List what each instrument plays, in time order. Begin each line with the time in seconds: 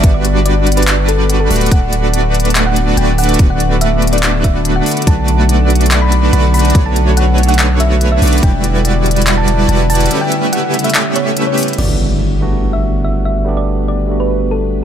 Already playing: harp B3 D4 E4, ambient pad B3
0.04 808-style bass G1, supersaw synth G3 B4, harp F#5, kick, closed hi-hat
0.14 harp D4, synth pluck D5
0.25 harp B3, closed hi-hat
0.35 harp F#4
0.46 harp F#4, synth pluck D5, closed hi-hat
0.56 harp G4
0.67 harp F#5, closed hi-hat
0.72 closed hi-hat
0.77 harp D4, synth pluck B4, closed hi-hat
0.82 closed hi-hat
0.88 harp B3, clap, closed hi-hat
0.98 harp F#4
1.08 harp F#4, synth pluck A4, closed hi-hat
1.19 harp G4
1.30 harp F#5, closed hi-hat
1.40 harp D4, synth pluck A4
1.50 808-style bass D1, ambient pad D3 B3 F#4, supersaw synth A3 D4 F#4 B4 D5, harp B3, open hi-hat
1.56 closed hi-hat
1.61 harp F#4, closed hi-hat
1.66 closed hi-hat
1.71 808-style bass D1, supersaw synth A3 D4 F#4 D5, synth pluck F#5, kick, closed hi-hat
1.82 harp A4
1.92 harp F#5, closed hi-hat
2.03 harp D4
2.13 harp B3, closed hi-hat
2.24 harp F#4
2.34 harp F#4, closed hi-hat
2.40 closed hi-hat
2.45 harp A4, closed hi-hat
2.50 closed hi-hat
2.55 harp F#5, clap, closed hi-hat
2.66 harp D4, synth pluck F#5
2.76 harp B3, closed hi-hat
2.87 harp F#4
2.97 808-style bass D1, supersaw synth A3 D4 F#4 B4 D5, harp F#4, synth pluck G5, closed hi-hat
3.08 harp A4
3.18 harp F#5, synth pluck F#5, open hi-hat
3.24 closed hi-hat
3.29 harp D4, closed hi-hat
3.34 closed hi-hat
3.39 808-style bass D1, kick, closed hi-hat
3.50 harp F#4, synth pluck F#5
3.60 harp F#4, closed hi-hat
3.71 harp A4
3.81 synth pluck E5, harp F#5, closed hi-hat
3.92 harp D4
4.02 harp B3, closed hi-hat
4.07 closed hi-hat
4.13 harp F#4, synth pluck D5, closed hi-hat
4.18 closed hi-hat
4.23 harp F#4, clap, closed hi-hat
4.34 harp A4
4.44 synth pluck E5, harp F#5, kick, closed hi-hat
4.55 harp D4
4.65 harp B3, closed hi-hat
4.76 harp F#4, synth pluck F#5
4.86 harp F#4, open hi-hat
4.91 closed hi-hat
4.97 harp A4, closed hi-hat
5.02 closed hi-hat
5.07 808-style bass B1, supersaw synth A3 D4 F#4 B4 D5, ambient pad B3 A4, harp F#5, synth pluck A5, kick, closed hi-hat
5.18 harp D4
5.28 harp B3, closed hi-hat
5.39 harp F#4
5.49 harp F#4, closed hi-hat
5.60 harp A4
5.70 harp F#5, closed hi-hat
5.75 closed hi-hat
5.81 harp D4, closed hi-hat
5.86 closed hi-hat
5.91 harp B3, clap, closed hi-hat
6.02 harp F#4, synth pluck B5
6.12 harp F#4, closed hi-hat
6.23 harp A4
6.33 808-style bass B1, supersaw synth A3 D4 F#4 B4 D5, harp F#5, synth pluck B5, closed hi-hat
6.44 harp D4
6.54 harp B3, synth pluck B5, open hi-hat
6.59 closed hi-hat
6.65 harp F#4, closed hi-hat
6.70 closed hi-hat
6.75 808-style bass B1, supersaw synth A3 D4 F#4 B4 C#5, kick, closed hi-hat
6.86 harp A4, synth pluck A5
6.96 harp F#5, closed hi-hat
7.07 harp D4
7.17 harp B3, synth pluck F#5, closed hi-hat
7.28 harp F#4
7.38 harp F#4, closed hi-hat
7.43 closed hi-hat
7.48 harp A4, synth pluck F#5, closed hi-hat
7.54 closed hi-hat
7.59 harp F#5, clap, closed hi-hat
7.70 harp D4
7.80 harp B3, synth pluck E5, closed hi-hat
7.91 harp F#4
8.01 harp F#4, closed hi-hat
8.12 harp A4, synth pluck E5
8.22 808-style bass B1, supersaw synth A3 D4 F#4 B4 D5, harp F#5, open hi-hat
8.27 closed hi-hat
8.32 harp D4, closed hi-hat
8.38 closed hi-hat
8.43 808-style bass E1, ambient pad D3 G3 F#4, supersaw synth G3 E4 F#4 B4 D5, harp B3, synth pluck G5, kick, closed hi-hat
8.53 harp E4
8.64 harp E4, closed hi-hat
8.74 harp F#4
8.85 harp D5, closed hi-hat
8.95 harp D4
9.06 harp B3, closed hi-hat
9.11 closed hi-hat
9.16 harp E4, closed hi-hat
9.22 closed hi-hat
9.27 clap, closed hi-hat
9.37 harp F#4, synth pluck A5
9.48 harp D5, closed hi-hat
9.58 harp D4
9.69 808-style bass E1, supersaw synth G3 E4 F#4 B4 D5, harp B3, synth pluck A5, closed hi-hat
9.79 harp E4
9.90 harp E4, synth pluck A5, open hi-hat
9.95 closed hi-hat
10.00 harp F#4, closed hi-hat
10.06 closed hi-hat
10.11 ambient pad C#3 B3 F#5, supersaw synth A3 C#4 G4 B4 E5, harp B4, closed hi-hat
10.21 harp C#4, synth pluck G5
10.32 harp B3, closed hi-hat
10.42 harp E4
10.53 harp E4, synth pluck F#5, closed hi-hat
10.63 harp F#4
10.74 harp B4, closed hi-hat
10.79 closed hi-hat
10.84 harp C#4, synth pluck E5, closed hi-hat
10.90 closed hi-hat
10.95 harp B3, clap, closed hi-hat
11.05 harp E4
11.16 harp B3, synth pluck C#5, closed hi-hat
11.26 harp A4
11.37 harp E4, closed hi-hat
11.47 harp C#4, synth pluck C#5
11.58 harp G4, open hi-hat
11.63 closed hi-hat
11.68 harp F#4, closed hi-hat
11.73 tine electric piano G3, closed hi-hat
11.77 808-style bass G1, tine electric piano A3 B3 D4 F#4, ambient pad B3, synth pluck D5, crash, impact
12.40 tine electric piano G3 A3 B3 D4 F#4
12.73 synth pluck E5
13.04 synth pluck E5
13.25 synth pluck E5
13.44 tine electric piano G3 A3 B3 D4 G4
13.57 synth pluck D5
13.88 synth pluck D5
14.07 tine electric piano G3 A3 B3 D4
14.11 tine electric piano F#4
14.20 synth pluck B4
14.51 synth pluck A4